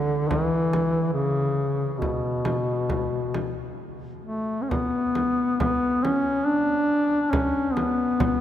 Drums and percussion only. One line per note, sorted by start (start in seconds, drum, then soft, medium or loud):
0.31 frame drum medium
0.73 frame drum soft
2.02 frame drum medium
2.45 frame drum soft
2.90 frame drum medium
3.34 frame drum soft
4.71 frame drum medium
5.15 frame drum soft
5.60 frame drum medium
6.05 frame drum soft
7.33 frame drum medium
7.77 frame drum soft
8.20 frame drum medium